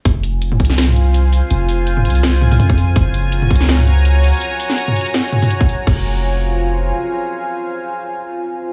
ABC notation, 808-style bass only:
X:1
M:4/4
L:1/8
Q:"Swing 16ths" 1/4=165
K:Fphr
V:1 name="808-style bass" clef=bass
F,,,3 C,,4 z | F,,,3 C,,3 F,,2 | G,,,3 D,,4 z | z8 |
F,,,6 z2 | z8 |]